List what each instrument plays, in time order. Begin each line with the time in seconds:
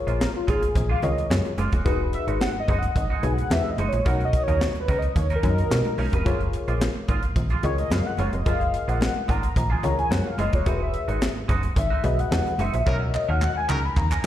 Already playing: fm electric piano F4 G#4 A#4 C#5
0.07 fm bass A#1, clean electric guitar G#3 A#3 F4, closed hi-hat
0.20 soft synth lead A#4, muted clean electric guitar stroke, snare, clap, high conga
0.35 soft synth lead F4, muted clean electric guitar stroke
0.47 fm bass G#1, clean electric guitar G#3 A#3 F4, soft synth lead G#4, kick, closed hi-hat, muted conga
0.62 muted clean electric guitar stroke, closed hi-hat
0.75 fm bass A#1, muted clean electric guitar stroke, kick, closed hi-hat, muted conga, low conga
0.89 clean electric guitar G#3 A#3 F4, soft synth lead F5
1.02 fm bass C#2, fm electric piano F4 G#4 A#4 C#5, soft synth lead D#5, muted clean electric guitar stroke, closed hi-hat, muted conga, low conga
1.17 muted clean electric guitar stroke, closed hi-hat
1.30 fm bass F#2, muted clean electric guitar stroke, snare, clap, high conga
1.45 muted clean electric guitar stroke, closed hi-hat
1.58 fm bass F#1, clean electric guitar G#3 A#3 F4, closed hi-hat, high conga
1.72 fm bass D#1, clean electric guitar G#3 A#3 F#4, kick, closed hi-hat
1.85 fm bass E1, clean electric guitar G#3 D#4 F#4, fm electric piano D#4 F#4 G#4 B4, kick, closed hi-hat, muted conga
2.01 muted clean electric guitar stroke
2.13 soft synth lead E5, muted clean electric guitar stroke, closed hi-hat
2.28 fm bass G#1, clean electric guitar G#3 D#4 F#4, closed hi-hat
2.41 soft synth lead F#5, muted clean electric guitar stroke, snare, clap, high conga
2.55 muted clean electric guitar stroke
2.60 soft synth lead D#5
2.68 fm bass F#1, clean electric guitar G#3 D#4 F#4, kick, closed hi-hat, muted conga
2.78 soft synth lead F#5
2.83 muted clean electric guitar stroke, closed hi-hat
2.96 fm bass G#1, soft synth lead D#5, muted clean electric guitar stroke, kick, closed hi-hat, muted conga, low conga
3.10 clean electric guitar G#3 D#4 F#4
3.15 soft synth lead G#5
3.23 fm bass B1, fm electric piano D#4 F#4 G#4 B4, muted clean electric guitar stroke, closed hi-hat, muted conga
3.33 soft synth lead F#5
3.38 muted clean electric guitar stroke, closed hi-hat
3.50 fm bass E2, soft synth lead E5, snare, clap, high conga
3.65 muted clean electric guitar stroke
3.70 soft synth lead D#5
3.78 fm bass F#1, clean electric guitar G#3 D#4 F#4, closed hi-hat, high conga
3.88 soft synth lead C#5
3.93 fm bass A#1, muted clean electric guitar stroke, closed hi-hat
4.05 fm bass B1, clean electric guitar C#4 D#4 A#4, fm electric piano D#4 F#4 A#4 C#5, soft synth lead F#5, kick, closed hi-hat
4.20 muted clean electric guitar stroke, closed hi-hat
4.25 soft synth lead D#5
4.33 muted clean electric guitar stroke, kick, closed hi-hat
4.43 soft synth lead C#5
4.48 fm bass D#2, clean electric guitar C#4 D#4 A#4, closed hi-hat
4.61 snare, clap, high conga
4.75 muted clean electric guitar stroke, closed hi-hat
4.80 soft synth lead B4
4.88 fm bass C#2, clean electric guitar C#4 D#4 A#4, kick, closed hi-hat, muted conga
4.99 soft synth lead D#5, closed hi-hat
5.03 muted clean electric guitar stroke
5.16 fm bass D#2, soft synth lead C#5, muted clean electric guitar stroke, kick, closed hi-hat, muted conga, low conga
5.30 clean electric guitar C#4 D#4 A#4, closed hi-hat
5.36 soft synth lead A#4
5.43 fm bass F#2, fm electric piano D#4 F#4 A#4 C#5, muted clean electric guitar stroke, kick, closed hi-hat, muted conga, low conga
5.50 fm electric piano D#5
5.58 muted clean electric guitar stroke, closed hi-hat
5.70 fm bass B2, muted clean electric guitar stroke, snare, clap, high conga
5.85 muted clean electric guitar stroke, closed hi-hat, high conga
5.98 fm bass B1, clean electric guitar C#4 D#4 A#4, open hi-hat, high conga
6.13 fm bass F1, clean electric guitar C#4 D#4 B4, kick, closed hi-hat
6.25 fm bass F#1, clean electric guitar G#3 A#3 F4, fm electric piano F4 G#4 A#4 C#5, kick, closed hi-hat, muted conga
6.41 muted clean electric guitar stroke, closed hi-hat
6.53 muted clean electric guitar stroke, closed hi-hat
6.68 fm bass A#1, clean electric guitar G#3 A#3 F4, closed hi-hat
6.81 muted clean electric guitar stroke, snare, clap, high conga
6.96 muted clean electric guitar stroke
7.08 fm bass G#1, clean electric guitar G#3 A#3 F4, kick, closed hi-hat, muted conga
7.23 muted clean electric guitar stroke, closed hi-hat
7.36 fm bass A#1, muted clean electric guitar stroke, kick, closed hi-hat, muted conga, low conga
7.50 clean electric guitar G#3 A#3 F4, closed hi-hat
7.63 fm bass C#2, fm electric piano F4 G#4 A#4 D#5, soft synth lead C#5, muted clean electric guitar stroke, closed hi-hat, muted conga
7.78 soft synth lead D#5, muted clean electric guitar stroke, closed hi-hat
7.90 fm bass F#2, soft synth lead F5, snare, clap, high conga
8.05 soft synth lead F#5, muted clean electric guitar stroke
8.17 fm bass F#1, clean electric guitar G#3 A#3 F4, soft synth lead C#5, closed hi-hat, high conga
8.33 fm bass F1, soft synth lead D#5, muted clean electric guitar stroke, closed hi-hat
8.46 fm bass F#1, clean electric guitar G#3 A#3 F4, fm electric piano F4 G#4 A#4 D#5, soft synth lead F5, kick, closed hi-hat, muted conga
8.60 muted clean electric guitar stroke, closed hi-hat
8.73 muted clean electric guitar stroke, closed hi-hat
8.88 fm bass A#1, clean electric guitar G#3 A#3 F4, soft synth lead F#5, closed hi-hat
9.01 muted clean electric guitar stroke, snare, clap, high conga
9.15 muted clean electric guitar stroke
9.28 fm bass G#1, clean electric guitar G#3 A#3 F4, soft synth lead A#5, kick, closed hi-hat, muted conga
9.43 muted clean electric guitar stroke, closed hi-hat
9.56 fm bass A#1, muted clean electric guitar stroke, kick, closed hi-hat, muted conga, low conga
9.70 clean electric guitar G#3 A#3 F4, soft synth lead G#5
9.83 fm bass C#2, fm electric piano F4 G#4 A#4 C#5, soft synth lead A#5, muted clean electric guitar stroke, closed hi-hat, muted conga, low conga
9.98 soft synth lead G#5, muted clean electric guitar stroke, closed hi-hat
10.10 fm bass F#2, soft synth lead F#5, muted clean electric guitar stroke, snare, clap, high conga
10.26 soft synth lead F5, muted clean electric guitar stroke
10.38 fm bass F#1, clean electric guitar G#3 A#3 F4, soft synth lead D#5, closed hi-hat, high conga
10.53 fm bass D#1, clean electric guitar G#3 A#3 F#4, soft synth lead C#5, kick, closed hi-hat
10.66 fm bass E1, clean electric guitar G#3 D#4 F#4, fm electric piano F#4 G#4 B4 E5, soft synth lead B4, kick, closed hi-hat
10.80 soft synth lead E5, muted clean electric guitar stroke
10.93 muted clean electric guitar stroke, closed hi-hat
11.08 fm bass G#1, clean electric guitar G#3 D#4 F#4, closed hi-hat
11.21 muted clean electric guitar stroke, snare, clap, high conga
11.36 muted clean electric guitar stroke
11.48 fm bass F#1, clean electric guitar G#3 D#4 F#4, kick, closed hi-hat, muted conga
11.63 muted clean electric guitar stroke, closed hi-hat
11.76 fm bass G#1, soft synth lead E5, muted clean electric guitar stroke, kick, closed hi-hat, muted conga, low conga
11.90 clean electric guitar G#3 D#4 F#4
12.04 fm bass B1, fm electric piano F#4 G#4 B4 D#5, closed hi-hat, muted conga
12.18 soft synth lead F#5, muted clean electric guitar stroke, closed hi-hat
12.31 fm bass E2, snare, clap, high conga
12.46 muted clean electric guitar stroke, closed hi-hat
12.58 fm bass F#1, clean electric guitar G#3 D#4 F#4, soft synth lead E5, closed hi-hat, high conga
12.73 fm bass A#1, muted clean electric guitar stroke, closed hi-hat
12.86 fm bass B1, horn section F#3 D#4 A#4, clean electric guitar C#4 D#4 A#4, fm electric piano F#4 A#4 C#5 D#5, kick, clap, muted conga
13.01 muted clean electric guitar stroke
13.14 soft synth lead D#5, muted clean electric guitar stroke, clap
13.28 fm bass D#2, clean electric guitar C#4 D#4 A#4, soft synth lead F#5
13.41 soft synth lead F#5, muted clean electric guitar stroke, clap, high conga
13.56 soft synth lead G#5, muted clean electric guitar stroke
13.68 fm bass C#2, horn section F#3 D#4 A#4, clean electric guitar C#4 D#4 A#4, soft synth lead A#5, clap, muted conga
13.83 soft synth lead B5, muted clean electric guitar stroke
13.96 fm bass D#2, soft synth lead A#5, muted clean electric guitar stroke, kick, clap, muted conga, low conga
14.11 clean electric guitar C#4 D#4 A#4, soft synth lead G#5, clap